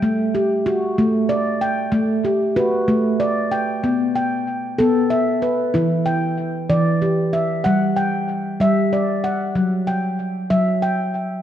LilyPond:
<<
  \new Staff \with { instrumentName = "Handpan" } { \time 6/8 \key e \dorian \tempo 4. = 63 << { g''8 g'4. r8 g''8~ | g''8 g'8 b'4. g''8~ | g''8 g''4. e''8 b'8~ | b'8 g''4. g'8 e''8~ |
e''8 g''4. d''8 fis''8~ | fis''8 g''4. g''4 | } \\ { a4 fis'4 d''4 | r4 fis'4 d''4 | b4 r8 a'4 r8 | e'4 r8 d''4 r8 |
fis''4 r8 e''4 r8 | fis4 r8 e''4 r8 | } >> }
  \new Staff \with { instrumentName = "Handpan" } { \clef bass \time 6/8 \key e \dorian r4. a4. | a4. a4. | r4. b4. | e4. e4. |
g4. g4. | r4. fis4. | }
>>